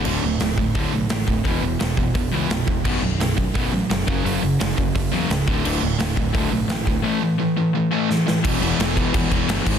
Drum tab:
CC |x-------|--------|x-------|--------|
HH |--o-o-o-|o-o-o-o-|--o-o-o-|o-o-o-o-|
SD |--o---o-|--o---o-|--o---o-|--o---o-|
BD |---oo--o|o--oo--o|o--oo--o|---oo--o|

CC |x-------|--------|xxxxxxxx|
HH |--o-o-o-|--------|--------|
SD |--o---o-|------oo|--o---o-|
BD |---oo--o|--------|o--ooo-o|